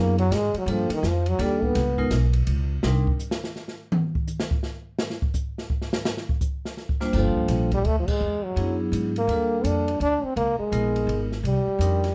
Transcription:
Already playing: upright bass F#2, vibraphone F#3 B3 D4 E4 G#4
0.00 trombone A#3
0.18 trombone F#3, ride
0.31 upright bass G#2, snare, hi-hat pedal, ride
0.35 trombone G#3
0.54 muted upright bass stroke, ride
0.58 trombone F#3
0.66 upright bass G2, vibraphone G3 A#3 D4 F4 A4, ride
0.71 trombone F3
0.89 muted upright bass stroke, ride
0.93 trombone D#3
1.03 upright bass F2, trombone F3, snare, hi-hat pedal
1.26 trombone F#3, ride
1.39 upright bass D#2, vibraphone G3 A#3 D4 F4 A4, snare, ride
1.43 trombone G3
1.62 trombone B3, kick
1.75 upright bass C#2, snare, ride
1.98 vibraphone G#3 B3 D#4 F4 A#4, kick
2.10 upright bass B1, snare, hi-hat pedal, ride
2.33 ride
2.47 upright bass C#2, ride
2.83 upright bass C2, vibraphone G3 C4 D4 D#4 A#4, snare
3.07 kick
3.19 hi-hat pedal
3.31 snare
3.44 snare
3.56 snare
3.68 snare
3.92 mid tom
4.15 kick
4.27 hi-hat pedal
4.40 snare
4.51 kick
4.63 snare
4.99 snare
5.10 snare
5.22 kick
5.34 kick, hi-hat pedal
5.58 snare
5.70 kick
5.82 snare
5.93 snare
6.05 snare
6.17 snare
6.29 kick
6.41 kick, hi-hat pedal
6.65 snare
6.77 snare
6.89 kick
7.00 vibraphone G3 A#3 D4 F4 C5, snare
7.13 upright bass G1, trombone F3, vibraphone G3 A#3 D4 F4 A4, kick, snare, crash
7.36 muted upright bass stroke, kick
7.48 upright bass A#1, snare, hi-hat pedal, ride
7.71 trombone G3, kick, ride
7.84 upright bass D2, trombone A3, ride
8.00 trombone F3
8.08 trombone G#3, muted upright bass stroke, kick, crash
8.20 upright bass E2
8.44 trombone F#3
8.56 upright bass F#2, vibraphone F#3 B3 D4 E4 G#4, ride
8.92 upright bass G#2, hi-hat pedal, ride
9.16 trombone A#3, ride
9.27 upright bass D#2, vibraphone G3 A#3 D4 F4 A4, ride
9.64 upright bass F2, trombone D4, hi-hat pedal, ride
9.88 ride
10.00 upright bass D2, trombone D4, ride
10.23 trombone C4, muted upright bass stroke
10.36 upright bass C#2, trombone A#3, ride
10.59 trombone G#3, muted upright bass stroke
10.72 upright bass A#1, vibraphone G#3 B3 D#4 F4 A#4, hi-hat pedal, ride
10.96 ride
11.07 upright bass G#1, ride
11.32 snare
11.43 upright bass C2, trombone G3, ride
11.67 muted upright bass stroke
11.79 upright bass F2, vibraphone G3 C4 D4 D#4 A#4, hi-hat pedal, ride
12.04 snare, ride

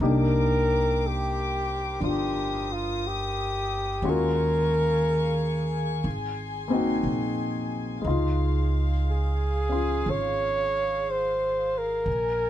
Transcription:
0.00 upright bass C2, grand piano A#3 D4 D#4 G4, string section A#4 C5 D6
0.05 flugelhorn A#4
1.07 flugelhorn G4
2.00 upright bass G1, grand piano D4 F4, flugelhorn F4, string section D#6
2.08 flugelhorn G4
2.73 flugelhorn F4
3.07 flugelhorn G4
4.02 upright bass D#2, grand piano G#3 C#4 F4 F#4, string section G#4 F5 G#5 C#6
4.10 flugelhorn A#4
6.04 upright bass G#1, string section C6
6.68 grand piano A#3 C4 D#4
6.73 grand piano F#4
7.03 upright bass A#1
8.02 upright bass C#2, grand piano G#3 D#4, string section F5
8.06 grand piano F4, string section G#4
9.11 flugelhorn G#4
9.69 grand piano C#4 F4
10.06 upright bass G#1
10.10 flugelhorn C#5
11.11 flugelhorn C5
11.78 flugelhorn A#4
12.06 upright bass A#1, string section A#4 G#5

